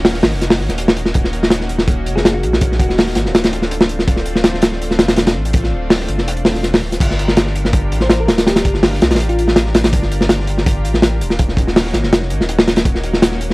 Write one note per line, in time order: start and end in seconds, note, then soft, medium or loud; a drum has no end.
0.00 0.22 D#1 medium
0.00 0.22 A#3 loud
0.00 0.22 C#4 medium
0.00 0.21 D#4 medium
0.00 0.21 F#4 loud
0.05 snare loud
0.05 open hi-hat medium
0.14 snare soft
0.22 0.34 G#1 medium
0.22 1.13 A#3 loud
0.22 1.13 C#4 medium
0.22 1.13 D#4 medium
0.22 1.13 F#4 loud
0.22 snare loud
0.22 open hi-hat medium
0.33 0.61 F1 medium
0.33 snare soft
0.41 snare soft
0.41 closed hi-hat medium
0.50 snare loud
0.50 open hi-hat medium
0.60 0.69 G#1 loud
0.60 snare soft
0.69 1.13 D#1 loud
0.69 snare soft
0.69 closed hi-hat medium
0.78 closed hi-hat medium
0.88 snare loud
0.97 closed hi-hat medium
1.05 snare medium
1.14 2.08 D#1 loud
1.14 1.40 A#3 medium
1.14 1.40 C#4 medium
1.14 1.40 D#4 medium
1.14 1.40 F#4 loud
1.14 kick loud
1.14 closed hi-hat medium
1.24 snare soft
1.33 closed hi-hat medium
1.42 1.68 A#3 loud
1.42 1.68 C#4 medium
1.42 1.68 D#4 medium
1.42 1.68 F#4 loud
1.42 snare medium
1.50 snare loud
1.50 closed hi-hat medium
1.61 snare soft
1.69 2.59 A#3 medium
1.69 2.59 C#4 medium
1.69 2.59 D#4 medium
1.69 2.59 F#4 loud
1.69 closed hi-hat medium
1.78 snare medium
1.88 kick loud
1.88 closed hi-hat medium
2.06 2.45 F1 loud
2.06 closed hi-hat medium
2.16 2.21 G#4 medium
2.16 snare soft
2.24 2.31 G#4 medium
2.24 snare loud
2.24 closed hi-hat medium
2.34 2.59 F#4 medium
2.43 2.81 A#1 medium
2.43 closed hi-hat medium
2.53 snare medium
2.61 2.87 A#3 medium
2.61 2.87 C#4 medium
2.61 2.87 D#4 medium
2.61 2.87 F#4 loud
2.61 kick loud
2.61 closed hi-hat medium
2.72 snare soft
2.79 3.15 D#1 medium
2.79 2.86 F#4 medium
2.79 kick loud
2.79 closed hi-hat medium
2.89 3.14 A#3 loud
2.89 3.14 C#4 medium
2.89 3.14 D#4 medium
2.89 2.95 F#4 medium
2.89 3.14 F#4 loud
2.89 snare soft
2.98 snare loud
2.98 open hi-hat medium
3.07 snare soft
3.15 3.27 G#1 medium
3.15 4.06 A3 loud
3.15 4.06 C4 medium
3.15 4.06 D4 medium
3.15 4.06 F4 loud
3.15 snare medium
3.15 closed hi-hat medium
3.25 4.06 D1 loud
3.25 snare soft
3.35 snare loud
3.35 closed hi-hat medium
3.44 snare loud
3.44 closed hi-hat medium
3.53 closed hi-hat medium
3.62 snare soft
3.71 closed hi-hat medium
3.81 snare loud
3.89 closed hi-hat medium
3.99 snare medium
4.08 5.00 D1 loud
4.08 4.33 A3 medium
4.08 4.33 C4 medium
4.08 4.33 D4 medium
4.08 4.33 F4 loud
4.08 kick loud
4.08 closed hi-hat medium
4.16 snare soft
4.26 closed hi-hat medium
4.35 4.60 A3 medium
4.35 4.61 C4 medium
4.35 4.60 D4 medium
4.35 4.60 F4 loud
4.35 snare medium
4.44 snare loud
4.44 closed hi-hat medium
4.54 snare soft
4.62 5.52 A3 medium
4.62 5.52 C4 medium
4.62 5.52 D4 medium
4.62 5.52 F4 loud
4.62 snare loud
4.62 closed hi-hat medium
4.72 snare soft
4.82 closed hi-hat medium
4.91 snare soft
4.99 5.37 E1 loud
4.99 snare loud
4.99 closed hi-hat medium
5.08 snare loud
5.08 closed hi-hat medium
5.16 snare loud
5.16 closed hi-hat medium
5.27 snare loud
5.27 closed hi-hat medium
5.36 5.74 A1 medium
5.45 closed hi-hat medium
5.53 5.80 A3 medium
5.53 5.80 C4 medium
5.53 5.80 D4 medium
5.53 5.80 F4 loud
5.53 kick loud
5.53 closed hi-hat medium
5.64 snare soft
5.72 6.07 D1 medium
5.81 6.07 A3 loud
5.81 6.07 C4 medium
5.81 6.07 D4 medium
5.81 6.07 F4 loud
5.90 snare loud
5.90 open hi-hat medium
6.00 snare soft
6.08 6.20 G1 medium
6.08 6.44 A3 medium
6.08 6.44 C4 medium
6.08 6.44 D4 medium
6.08 6.44 F4 medium
6.08 closed hi-hat medium
6.18 6.55 E1 loud
6.18 snare soft
6.28 closed hi-hat medium
6.37 closed hi-hat soft
6.45 6.53 A3 medium
6.45 6.53 C4 medium
6.45 6.53 D4 medium
6.45 6.53 F4 medium
6.45 snare loud
6.45 open hi-hat medium
6.55 6.81 E1 medium
6.55 6.62 A3 loud
6.55 6.62 C4 medium
6.55 6.62 D4 medium
6.55 6.62 F4 loud
6.55 snare soft
6.63 snare soft
6.63 closed hi-hat medium
6.74 snare loud
6.74 open hi-hat medium
6.82 6.99 D1 medium
6.82 snare soft
6.92 snare soft
6.92 closed hi-hat medium
7.00 7.93 G1 loud
7.00 7.26 D4 medium
7.00 7.26 F4 medium
7.00 7.26 G4 medium
7.00 7.26 A#4 loud
7.00 kick loud
7.00 closed hi-hat loud
7.00 crash medium
7.11 snare soft
7.19 closed hi-hat medium
7.28 7.53 D4 loud
7.28 7.53 F4 medium
7.28 7.53 G4 medium
7.28 7.53 A#4 loud
7.28 snare medium
7.37 snare loud
7.37 closed hi-hat medium
7.47 snare soft
7.55 8.45 D4 medium
7.55 8.45 F4 medium
7.55 8.45 G4 medium
7.55 8.45 A#4 loud
7.55 closed hi-hat medium
7.65 snare soft
7.73 kick loud
7.73 closed hi-hat medium
7.92 8.30 A1 loud
7.92 closed hi-hat medium
8.00 8.07 C5 medium
8.00 snare soft
8.10 8.17 C5 medium
8.10 snare loud
8.10 closed hi-hat medium
8.20 8.45 A#4 medium
8.28 8.67 D1 medium
8.28 snare loud
8.28 closed hi-hat medium
8.38 snare loud
8.38 closed hi-hat medium
8.46 8.72 D4 loud
8.46 8.72 F4 medium
8.46 8.72 G4 medium
8.46 8.75 G4 loud
8.46 8.72 A#4 loud
8.46 snare loud
8.46 closed hi-hat medium
8.56 snare loud
8.56 closed hi-hat medium
8.65 9.00 G1 medium
8.65 kick loud
8.65 closed hi-hat medium
8.74 8.99 D4 loud
8.74 8.99 F4 medium
8.74 8.99 G4 medium
8.74 8.99 A#4 loud
8.74 snare soft
8.83 snare loud
8.83 open hi-hat medium
8.93 snare soft
9.01 9.13 C2 medium
9.01 9.91 D4 medium
9.01 9.91 F4 medium
9.01 9.91 G4 medium
9.01 9.91 A#4 loud
9.01 snare loud
9.01 closed hi-hat medium
9.11 9.92 A1 medium
9.11 snare medium
9.11 closed hi-hat medium
9.15 snare medium
9.15 closed hi-hat medium
9.20 closed hi-hat medium
9.29 9.80 F4 medium
9.29 closed hi-hat soft
9.39 closed hi-hat medium
9.48 snare medium
9.56 snare loud
9.56 closed hi-hat medium
9.66 snare soft
9.75 snare loud
9.75 closed hi-hat medium
9.84 snare loud
9.84 closed hi-hat medium
9.93 10.86 G1 loud
9.93 10.18 D4 medium
9.93 10.18 F4 medium
9.93 10.19 G4 medium
9.93 10.18 A#4 loud
9.93 kick loud
9.93 closed hi-hat medium
10.02 snare soft
10.12 closed hi-hat medium
10.21 10.46 D4 medium
10.21 10.46 F4 medium
10.21 10.46 G4 medium
10.21 10.46 A#4 loud
10.21 snare medium
10.29 snare loud
10.29 closed hi-hat loud
10.40 snare soft
10.47 11.37 D4 medium
10.47 11.37 F4 medium
10.47 11.37 G4 medium
10.47 11.37 A#4 loud
10.47 closed hi-hat medium
10.58 snare soft
10.66 kick loud
10.66 closed hi-hat loud
10.85 11.23 A1 loud
10.85 closed hi-hat medium
10.94 snare soft
11.02 snare loud
11.02 closed hi-hat medium
11.21 11.56 D#1 medium
11.21 closed hi-hat medium
11.30 snare soft
11.39 11.65 A#3 medium
11.39 11.65 C#4 medium
11.39 11.65 D#4 medium
11.39 11.65 F#4 loud
11.39 kick loud
11.39 closed hi-hat medium
11.48 snare soft
11.57 11.93 D#1 loud
11.57 kick loud
11.57 closed hi-hat medium
11.67 11.92 A#3 loud
11.67 11.92 C#4 medium
11.67 11.92 D#4 medium
11.67 11.92 F#4 loud
11.67 snare soft
11.76 snare loud
11.76 open hi-hat medium
11.85 snare soft
11.94 12.05 G#1 medium
11.94 12.29 A#3 medium
11.94 12.29 C#4 medium
11.94 12.29 D#4 medium
11.94 12.29 F#4 loud
11.94 snare medium
11.94 closed hi-hat medium
12.03 12.32 F1 medium
12.03 snare soft
12.13 snare loud
12.13 closed hi-hat medium
12.22 snare soft
12.30 12.39 G#1 loud
12.30 12.38 A#3 medium
12.30 12.38 C#4 medium
12.30 12.38 D#4 medium
12.30 12.38 F#4 medium
12.30 closed hi-hat medium
12.40 12.84 D#1 loud
12.40 12.48 A#3 loud
12.40 12.48 C#4 medium
12.40 12.48 D#4 medium
12.40 12.48 F#4 loud
12.40 snare medium
12.49 closed hi-hat medium
12.59 snare loud
12.68 snare loud
12.68 closed hi-hat medium
12.76 snare loud
12.76 closed hi-hat medium
12.85 13.54 D#1 loud
12.85 13.11 A#3 medium
12.85 13.11 C#4 medium
12.85 13.11 D#4 medium
12.85 13.11 F#4 loud
12.85 kick loud
12.85 closed hi-hat medium
12.95 snare soft
13.04 closed hi-hat medium
13.13 13.38 A#3 medium
13.13 13.38 C#4 medium
13.13 13.38 D#4 medium
13.13 13.38 F#4 loud
13.13 snare medium
13.22 snare loud
13.22 closed hi-hat medium
13.32 snare soft
13.41 13.54 A#3 medium
13.41 13.54 C#4 medium
13.41 13.54 D#4 medium
13.41 13.54 F#4 loud
13.41 closed hi-hat medium
13.50 snare soft